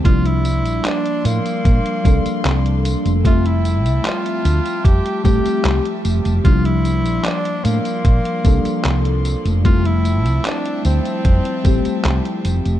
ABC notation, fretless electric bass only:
X:1
M:4/4
L:1/16
Q:1/4=75
K:F
V:1 name="Fretless electric bass" clef=bass
C,,3 B,,, z2 A,, z B,, z C,, z C,,2 z F,,,- | F,,,3 C,, z2 D,, z F,, z A,,, z C,, z F,,, F,,, | C,,3 B,,, z2 A,, z B,, z C,, z C,,2 z F,,,- | F,,,3 C,, z2 D,, z F,, z A,,, z C,, z F,,, F,,, |]